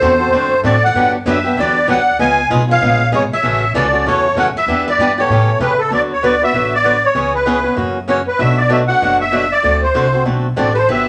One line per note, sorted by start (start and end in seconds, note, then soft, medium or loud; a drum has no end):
0.00 0.32 E2 medium
0.00 0.12 D3 medium
0.00 0.12 A3 medium
0.00 0.13 C4 medium
0.00 0.13 F#4 medium
0.00 0.61 A4 medium
0.00 0.13 A4 loud
0.00 0.61 C5 medium
0.19 0.32 C4 soft
0.19 0.32 F#4 soft
0.19 0.32 A4 medium
0.32 0.63 F#2 medium
0.32 0.52 D3 medium
0.32 0.53 A3 medium
0.32 0.53 C4 medium
0.32 0.53 F#4 medium
0.32 0.53 A4 medium
0.63 0.94 A2 medium
0.63 0.75 D3 medium
0.63 0.75 A3 medium
0.63 0.75 C4 medium
0.63 0.75 F#4 medium
0.63 0.75 A4 medium
0.63 0.82 A4 medium
0.63 0.84 D5 medium
0.84 1.13 D5 medium
0.84 1.12 F#5 medium
0.94 1.25 G2 medium
0.94 1.15 D3 medium
0.94 1.15 F#3 medium
0.94 1.15 B3 medium
0.94 1.15 D4 medium
0.94 1.16 G4 medium
1.26 1.56 F#2 medium
1.26 1.37 D3 medium
1.26 1.37 F#3 loud
1.26 1.37 B3 medium
1.26 1.37 D4 medium
1.26 1.38 G4 medium
1.26 1.56 B4 medium
1.30 1.60 E5 medium
1.44 1.56 B3 soft
1.44 1.57 D4 medium
1.44 1.56 G4 medium
1.57 1.87 E2 medium
1.57 1.77 D3 medium
1.57 1.77 F#3 medium
1.57 1.77 B3 medium
1.57 1.77 D4 medium
1.57 1.78 G4 medium
1.57 1.88 B4 medium
1.57 1.87 D5 medium
1.87 2.18 D2 medium
1.87 1.98 D3 medium
1.87 1.99 F#3 medium
1.87 1.99 B3 medium
1.87 1.99 D4 medium
1.87 1.99 G4 medium
1.87 2.18 F#5 medium
1.92 2.19 D5 medium
2.19 2.49 C#2 medium
2.19 2.39 C#3 medium
2.19 2.39 G#3 medium
2.19 2.39 B3 medium
2.19 2.39 F4 medium
2.19 2.40 G#4 medium
2.19 2.50 F5 medium
2.19 2.49 G#5 loud
2.50 2.80 B1 medium
2.50 2.61 C#3 medium
2.50 2.61 G#3 medium
2.50 2.61 B3 medium
2.50 2.61 F4 loud
2.50 2.61 G#4 loud
2.68 2.80 B3 soft
2.68 2.80 F4 medium
2.68 2.80 G#4 medium
2.68 3.11 C#5 medium
2.72 3.11 F5 loud
2.81 3.11 A#1 medium
2.81 3.01 C#3 medium
2.81 3.01 G#3 medium
2.81 3.01 B3 medium
2.81 3.01 F4 medium
2.81 3.01 G#4 medium
3.12 3.29 G#1 medium
3.12 3.23 C#3 medium
3.12 3.23 G#3 medium
3.12 3.23 B3 medium
3.12 3.23 F4 medium
3.12 3.23 G#4 medium
3.12 3.19 G#4 medium
3.12 3.23 C#5 medium
3.31 3.73 C#5 medium
3.31 3.73 E5 medium
3.31 muted upright bass stroke soft
3.43 3.73 A1 medium
3.43 3.63 C#3 medium
3.43 3.63 E3 medium
3.43 3.63 A3 medium
3.43 3.64 C#4 medium
3.43 3.63 F#4 medium
3.74 4.04 C#2 medium
3.74 3.85 C#3 medium
3.74 3.85 E3 medium
3.74 3.85 A3 medium
3.74 3.85 C#4 loud
3.74 3.86 F#4 medium
3.74 4.04 A4 medium
3.74 4.07 D5 medium
3.93 4.05 A3 soft
3.93 4.05 C#4 medium
3.93 4.05 F#4 soft
4.05 4.35 E2 medium
4.05 4.25 C#3 medium
4.05 4.26 E3 medium
4.05 4.26 A3 medium
4.05 4.26 C#4 medium
4.05 4.26 F#4 medium
4.05 4.36 A4 medium
4.05 4.35 C#5 medium
4.35 4.53 F#2 medium
4.35 4.47 C#3 medium
4.35 4.47 E3 medium
4.35 4.48 A3 medium
4.35 4.47 C#4 medium
4.35 4.48 F#4 medium
4.35 4.46 F#5 medium
4.41 4.46 C#5 medium
4.54 4.85 B4 medium
4.54 4.85 E5 medium
4.54 muted upright bass stroke soft
4.66 4.97 E2 medium
4.66 4.87 E3 medium
4.66 4.88 B3 medium
4.66 4.88 D4 medium
4.66 4.88 G4 medium
4.88 5.16 B4 medium
4.88 5.20 D5 medium
4.98 5.28 G2 medium
4.98 5.10 E3 medium
4.98 5.10 B3 medium
4.98 5.10 D4 loud
4.98 5.10 G4 medium
5.18 5.30 B3 soft
5.18 5.30 D4 soft
5.18 5.29 G4 medium
5.18 5.59 A4 medium
5.18 5.59 C#5 medium
5.29 5.59 A2 medium
5.29 5.50 C#3 medium
5.29 5.50 E3 medium
5.29 5.50 A3 medium
5.29 5.50 C#4 medium
5.29 5.50 G4 medium
5.59 5.90 C#3 medium
5.59 5.71 C#3 medium
5.59 5.71 E3 medium
5.59 5.71 A3 medium
5.59 5.71 C#4 medium
5.59 5.72 G4 medium
5.59 5.80 B4 medium
5.79 5.92 A4 medium
5.90 6.41 D2 medium
5.90 6.11 D3 medium
5.90 6.11 F#3 medium
5.90 6.12 B3 medium
5.90 6.12 F#4 medium
5.90 6.12 B4 medium
5.90 6.02 D5 medium
6.13 6.24 C#5 medium
6.23 6.33 D3 medium
6.23 6.34 F#3 medium
6.23 6.34 B3 medium
6.23 6.34 F#4 medium
6.23 6.34 B4 medium
6.23 6.43 D5 medium
6.42 6.53 B3 soft
6.42 6.53 F#4 soft
6.42 6.54 B4 soft
6.42 6.74 E5 medium
6.53 7.03 A1 medium
6.53 6.74 D3 medium
6.53 6.74 F#3 medium
6.53 6.74 B3 medium
6.53 6.74 F#4 medium
6.53 6.74 B4 medium
6.75 7.05 D5 medium
6.84 6.95 D3 medium
6.84 6.95 F#3 medium
6.84 6.95 B3 medium
6.84 6.95 F#4 medium
6.84 6.96 B4 medium
7.05 7.33 C#5 medium
7.15 7.65 C#2 medium
7.15 7.35 C#3 medium
7.15 7.35 E3 medium
7.15 7.35 B3 medium
7.15 7.35 C#4 medium
7.15 7.35 G#4 medium
7.35 7.75 B4 medium
7.46 7.57 C#3 medium
7.46 7.57 E3 medium
7.46 7.57 B3 medium
7.46 7.58 C#4 medium
7.46 7.58 G#4 medium
7.64 7.76 B3 soft
7.64 7.76 C#4 soft
7.64 7.77 G#4 medium
7.76 8.27 F#2 medium
7.76 7.97 C#3 medium
7.76 7.97 E3 medium
7.76 7.97 A#3 medium
7.76 7.97 C#4 medium
7.76 7.97 F#4 medium
8.08 8.19 C#3 medium
8.08 8.19 E3 medium
8.08 8.20 A#3 medium
8.08 8.20 C#4 medium
8.08 8.20 F#4 medium
8.08 8.18 C#5 medium
8.28 8.41 B4 medium
8.39 8.89 B1 medium
8.39 8.59 B2 medium
8.39 8.60 F#3 medium
8.39 8.60 A3 medium
8.39 8.60 D4 medium
8.39 8.60 F#4 medium
8.39 8.59 E5 loud
8.58 8.70 D5 medium
8.69 8.81 B2 medium
8.69 8.81 F#3 medium
8.69 8.81 A3 medium
8.69 8.81 D4 medium
8.69 8.81 F#4 medium
8.69 8.79 E5 medium
8.88 9.01 A3 soft
8.88 9.01 D4 soft
8.88 9.01 F#4 medium
8.88 9.18 F#5 loud
9.01 9.52 F#1 medium
9.01 9.21 B2 medium
9.01 9.22 F#3 medium
9.01 9.22 A3 medium
9.01 9.22 D4 medium
9.01 9.22 F#4 medium
9.21 9.53 E5 loud
9.31 9.43 B2 medium
9.31 9.43 F#3 medium
9.31 9.44 A3 medium
9.31 9.44 D4 medium
9.31 9.44 F#4 medium
9.52 9.81 D5 medium
9.63 9.89 D2 medium
9.63 9.84 D3 medium
9.63 9.84 A3 medium
9.63 9.84 C4 medium
9.63 9.84 F#4 medium
9.63 9.84 A4 medium
9.83 10.24 C5 medium
9.94 10.21 C2 medium
9.94 10.06 D3 medium
9.94 10.06 A3 medium
9.94 10.06 C4 medium
9.94 10.06 F#4 medium
9.94 10.06 A4 medium
10.12 10.24 C4 soft
10.12 10.24 F#4 soft
10.12 10.25 A4 medium
10.25 10.53 B1 medium
10.25 10.46 D3 medium
10.25 10.46 A3 medium
10.25 10.46 C4 medium
10.25 10.46 F#4 medium
10.25 10.46 A4 medium
10.56 10.84 A1 medium
10.56 10.68 D3 medium
10.56 10.68 A3 medium
10.56 10.68 C4 medium
10.56 10.68 F#4 medium
10.56 10.70 A4 medium
10.56 10.68 A4 medium
10.56 10.73 D5 medium
10.71 10.76 G4 soft
10.71 10.87 A4 medium
10.71 10.78 B4 medium
10.77 10.89 C5 medium
10.88 11.08 G1 medium
10.88 11.08 D3 medium
10.88 11.08 F#3 medium
10.88 11.08 B3 medium
10.88 11.08 D4 medium
10.88 11.08 G4 medium
10.88 11.06 B4 medium
10.88 11.08 E5 loud